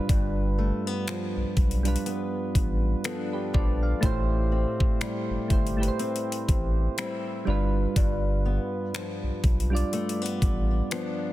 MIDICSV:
0, 0, Header, 1, 5, 480
1, 0, Start_track
1, 0, Tempo, 983607
1, 45, Time_signature, 4, 2, 24, 8
1, 5529, End_track
2, 0, Start_track
2, 0, Title_t, "Synth keys"
2, 0, Program_c, 0, 88
2, 0, Control_c, 0, 64, 127
2, 0, Note_on_c, 0, 55, 89
2, 0, Note_on_c, 0, 62, 81
2, 0, Note_on_c, 0, 65, 76
2, 0, Note_on_c, 0, 71, 94
2, 576, Note_off_c, 0, 55, 0
2, 579, Note_off_c, 0, 62, 0
2, 583, Note_off_c, 0, 65, 0
2, 603, Note_off_c, 0, 71, 0
2, 894, Note_on_c, 0, 55, 78
2, 902, Note_on_c, 0, 62, 73
2, 909, Note_on_c, 0, 65, 69
2, 917, Note_on_c, 0, 71, 86
2, 1247, Note_off_c, 0, 65, 0
2, 1251, Note_off_c, 0, 71, 0
2, 1487, Note_on_c, 0, 69, 59
2, 1490, Note_on_c, 0, 65, 52
2, 1551, Note_off_c, 0, 55, 0
2, 1555, Note_off_c, 0, 62, 0
2, 1618, Note_off_c, 0, 69, 0
2, 1620, Note_off_c, 0, 65, 0
2, 1626, Note_on_c, 0, 71, 67
2, 1629, Note_on_c, 0, 67, 59
2, 1721, Note_off_c, 0, 71, 0
2, 1723, Note_off_c, 0, 67, 0
2, 1728, Note_on_c, 0, 74, 70
2, 1731, Note_on_c, 0, 71, 56
2, 1859, Note_off_c, 0, 74, 0
2, 1860, Note_off_c, 0, 71, 0
2, 1868, Note_on_c, 0, 77, 59
2, 1871, Note_on_c, 0, 74, 51
2, 1956, Note_on_c, 0, 57, 104
2, 1963, Note_on_c, 0, 64, 96
2, 1971, Control_c, 0, 64, 0
2, 1971, Note_on_c, 0, 67, 92
2, 1978, Note_on_c, 0, 72, 111
2, 2069, Control_c, 0, 64, 127
2, 2094, Note_off_c, 0, 77, 0
2, 2096, Note_off_c, 0, 74, 0
2, 2541, Note_off_c, 0, 57, 0
2, 2544, Note_off_c, 0, 64, 0
2, 2548, Note_off_c, 0, 67, 0
2, 2552, Note_off_c, 0, 72, 0
2, 2675, Note_on_c, 0, 57, 68
2, 2683, Note_on_c, 0, 64, 68
2, 2690, Note_on_c, 0, 67, 65
2, 2698, Note_on_c, 0, 72, 75
2, 2790, Note_off_c, 0, 57, 0
2, 2793, Note_off_c, 0, 64, 0
2, 2797, Note_off_c, 0, 67, 0
2, 2801, Note_off_c, 0, 72, 0
2, 2815, Note_on_c, 0, 57, 81
2, 2822, Note_on_c, 0, 64, 75
2, 2830, Note_on_c, 0, 67, 74
2, 2837, Note_on_c, 0, 71, 67
2, 2857, Note_off_c, 0, 71, 0
2, 2869, Note_on_c, 0, 72, 89
2, 3569, Note_off_c, 0, 57, 0
2, 3573, Note_off_c, 0, 64, 0
2, 3577, Note_off_c, 0, 67, 0
2, 3597, Note_off_c, 0, 72, 0
2, 3636, Note_on_c, 0, 55, 86
2, 3644, Note_on_c, 0, 62, 76
2, 3651, Control_c, 0, 64, 0
2, 3651, Note_on_c, 0, 65, 80
2, 3659, Note_on_c, 0, 71, 91
2, 3743, Control_c, 0, 64, 127
2, 4416, Note_off_c, 0, 55, 0
2, 4420, Note_off_c, 0, 62, 0
2, 4424, Note_off_c, 0, 65, 0
2, 4428, Note_off_c, 0, 71, 0
2, 4734, Note_on_c, 0, 55, 84
2, 4742, Note_on_c, 0, 62, 74
2, 4749, Note_on_c, 0, 65, 74
2, 4757, Note_on_c, 0, 74, 88
2, 5391, Note_off_c, 0, 55, 0
2, 5395, Note_off_c, 0, 62, 0
2, 5399, Note_off_c, 0, 65, 0
2, 5402, Note_off_c, 0, 74, 0
2, 5529, End_track
3, 0, Start_track
3, 0, Title_t, "Steel-string acoustic guitar"
3, 0, Program_c, 1, 25
3, 0, Note_on_c, 1, 55, 57
3, 45, Note_on_c, 1, 43, 81
3, 285, Note_on_c, 1, 57, 56
3, 300, Note_off_c, 1, 55, 0
3, 424, Note_off_c, 1, 57, 0
3, 424, Note_on_c, 1, 59, 50
3, 525, Note_on_c, 1, 53, 58
3, 1000, Note_off_c, 1, 59, 0
3, 1006, Note_on_c, 1, 59, 66
3, 1479, Note_off_c, 1, 53, 0
3, 1482, Note_off_c, 1, 59, 0
3, 1485, Note_on_c, 1, 53, 57
3, 1488, Note_on_c, 1, 59, 61
3, 1491, Note_on_c, 1, 62, 66
3, 1719, Note_off_c, 1, 53, 0
3, 1725, Note_on_c, 1, 53, 60
3, 1963, Note_off_c, 1, 43, 0
3, 1965, Note_on_c, 1, 45, 82
3, 2021, Note_off_c, 1, 53, 0
3, 2022, Note_off_c, 1, 59, 0
3, 2024, Note_off_c, 1, 62, 0
3, 2205, Note_on_c, 1, 60, 57
3, 2445, Note_on_c, 1, 55, 62
3, 2920, Note_off_c, 1, 60, 0
3, 2926, Note_on_c, 1, 60, 65
3, 3403, Note_off_c, 1, 60, 0
3, 3404, Note_off_c, 1, 55, 0
3, 3406, Note_on_c, 1, 55, 59
3, 3409, Note_on_c, 1, 60, 62
3, 3412, Note_on_c, 1, 64, 67
3, 3644, Note_off_c, 1, 45, 0
3, 3645, Note_on_c, 1, 43, 75
3, 3703, Note_off_c, 1, 60, 0
3, 3704, Note_off_c, 1, 64, 0
3, 3880, Note_off_c, 1, 43, 0
3, 3886, Note_on_c, 1, 43, 83
3, 4126, Note_on_c, 1, 59, 56
3, 4363, Note_off_c, 1, 55, 0
3, 4365, Note_on_c, 1, 53, 62
3, 4844, Note_off_c, 1, 59, 0
3, 4846, Note_on_c, 1, 57, 64
3, 4985, Note_off_c, 1, 57, 0
3, 4985, Note_on_c, 1, 59, 54
3, 5321, Note_off_c, 1, 53, 0
3, 5324, Note_off_c, 1, 59, 0
3, 5327, Note_on_c, 1, 53, 62
3, 5329, Note_on_c, 1, 59, 61
3, 5333, Note_on_c, 1, 62, 70
3, 5529, Note_off_c, 1, 43, 0
3, 5529, Note_off_c, 1, 53, 0
3, 5529, Note_off_c, 1, 59, 0
3, 5529, Note_off_c, 1, 62, 0
3, 5529, End_track
4, 0, Start_track
4, 0, Title_t, "Sub bass"
4, 0, Program_c, 2, 38
4, 46, Note_on_c, 2, 31, 112
4, 350, Note_off_c, 2, 31, 0
4, 666, Note_on_c, 2, 35, 44
4, 706, Note_off_c, 2, 35, 0
4, 766, Note_on_c, 2, 35, 93
4, 959, Note_off_c, 2, 35, 0
4, 1246, Note_on_c, 2, 33, 80
4, 1438, Note_off_c, 2, 33, 0
4, 1730, Note_on_c, 2, 34, 91
4, 1921, Note_off_c, 2, 34, 0
4, 1966, Note_on_c, 2, 33, 95
4, 2271, Note_off_c, 2, 33, 0
4, 2586, Note_on_c, 2, 31, 43
4, 2625, Note_off_c, 2, 31, 0
4, 2686, Note_on_c, 2, 31, 90
4, 2879, Note_off_c, 2, 31, 0
4, 3166, Note_on_c, 2, 33, 88
4, 3358, Note_off_c, 2, 33, 0
4, 3646, Note_on_c, 2, 31, 101
4, 3839, Note_off_c, 2, 31, 0
4, 3886, Note_on_c, 2, 31, 109
4, 4191, Note_off_c, 2, 31, 0
4, 4505, Note_on_c, 2, 35, 45
4, 4545, Note_off_c, 2, 35, 0
4, 4606, Note_on_c, 2, 35, 97
4, 4799, Note_off_c, 2, 35, 0
4, 5086, Note_on_c, 2, 33, 80
4, 5279, Note_off_c, 2, 33, 0
4, 5529, End_track
5, 0, Start_track
5, 0, Title_t, "Drums"
5, 45, Note_on_c, 9, 36, 116
5, 45, Note_on_c, 9, 42, 68
5, 94, Note_off_c, 9, 36, 0
5, 94, Note_off_c, 9, 42, 0
5, 525, Note_on_c, 9, 42, 65
5, 527, Note_on_c, 9, 26, 111
5, 574, Note_off_c, 9, 42, 0
5, 575, Note_off_c, 9, 26, 0
5, 765, Note_on_c, 9, 36, 88
5, 765, Note_on_c, 9, 42, 40
5, 814, Note_off_c, 9, 36, 0
5, 814, Note_off_c, 9, 42, 0
5, 835, Note_on_c, 9, 42, 48
5, 884, Note_off_c, 9, 42, 0
5, 904, Note_on_c, 9, 42, 53
5, 953, Note_off_c, 9, 42, 0
5, 955, Note_on_c, 9, 42, 60
5, 1004, Note_off_c, 9, 42, 0
5, 1006, Note_on_c, 9, 42, 59
5, 1055, Note_off_c, 9, 42, 0
5, 1245, Note_on_c, 9, 36, 88
5, 1247, Note_on_c, 9, 42, 62
5, 1294, Note_off_c, 9, 36, 0
5, 1296, Note_off_c, 9, 42, 0
5, 1485, Note_on_c, 9, 42, 69
5, 1489, Note_on_c, 9, 26, 114
5, 1534, Note_off_c, 9, 42, 0
5, 1538, Note_off_c, 9, 26, 0
5, 1729, Note_on_c, 9, 36, 91
5, 1778, Note_off_c, 9, 36, 0
5, 1965, Note_on_c, 9, 36, 118
5, 1966, Note_on_c, 9, 42, 68
5, 2014, Note_off_c, 9, 36, 0
5, 2015, Note_off_c, 9, 42, 0
5, 2344, Note_on_c, 9, 36, 95
5, 2393, Note_off_c, 9, 36, 0
5, 2445, Note_on_c, 9, 42, 61
5, 2447, Note_on_c, 9, 26, 109
5, 2494, Note_off_c, 9, 42, 0
5, 2495, Note_off_c, 9, 26, 0
5, 2685, Note_on_c, 9, 36, 88
5, 2685, Note_on_c, 9, 42, 41
5, 2734, Note_off_c, 9, 36, 0
5, 2734, Note_off_c, 9, 42, 0
5, 2765, Note_on_c, 9, 42, 45
5, 2814, Note_off_c, 9, 42, 0
5, 2846, Note_on_c, 9, 42, 49
5, 2894, Note_off_c, 9, 42, 0
5, 2926, Note_on_c, 9, 42, 53
5, 2974, Note_off_c, 9, 42, 0
5, 3005, Note_on_c, 9, 42, 58
5, 3053, Note_off_c, 9, 42, 0
5, 3085, Note_on_c, 9, 42, 61
5, 3134, Note_off_c, 9, 42, 0
5, 3165, Note_on_c, 9, 36, 85
5, 3166, Note_on_c, 9, 42, 62
5, 3214, Note_off_c, 9, 36, 0
5, 3215, Note_off_c, 9, 42, 0
5, 3405, Note_on_c, 9, 42, 72
5, 3409, Note_on_c, 9, 26, 113
5, 3454, Note_off_c, 9, 42, 0
5, 3458, Note_off_c, 9, 26, 0
5, 3885, Note_on_c, 9, 36, 115
5, 3886, Note_on_c, 9, 42, 72
5, 3934, Note_off_c, 9, 36, 0
5, 3935, Note_off_c, 9, 42, 0
5, 4365, Note_on_c, 9, 42, 63
5, 4367, Note_on_c, 9, 26, 104
5, 4414, Note_off_c, 9, 42, 0
5, 4415, Note_off_c, 9, 26, 0
5, 4605, Note_on_c, 9, 36, 92
5, 4605, Note_on_c, 9, 42, 40
5, 4654, Note_off_c, 9, 36, 0
5, 4654, Note_off_c, 9, 42, 0
5, 4685, Note_on_c, 9, 42, 45
5, 4734, Note_off_c, 9, 42, 0
5, 4766, Note_on_c, 9, 42, 49
5, 4814, Note_off_c, 9, 42, 0
5, 4846, Note_on_c, 9, 42, 54
5, 4894, Note_off_c, 9, 42, 0
5, 4925, Note_on_c, 9, 42, 60
5, 4974, Note_off_c, 9, 42, 0
5, 5006, Note_on_c, 9, 42, 64
5, 5055, Note_off_c, 9, 42, 0
5, 5085, Note_on_c, 9, 36, 90
5, 5086, Note_on_c, 9, 42, 59
5, 5134, Note_off_c, 9, 36, 0
5, 5135, Note_off_c, 9, 42, 0
5, 5325, Note_on_c, 9, 42, 73
5, 5329, Note_on_c, 9, 26, 113
5, 5374, Note_off_c, 9, 42, 0
5, 5378, Note_off_c, 9, 26, 0
5, 5529, End_track
0, 0, End_of_file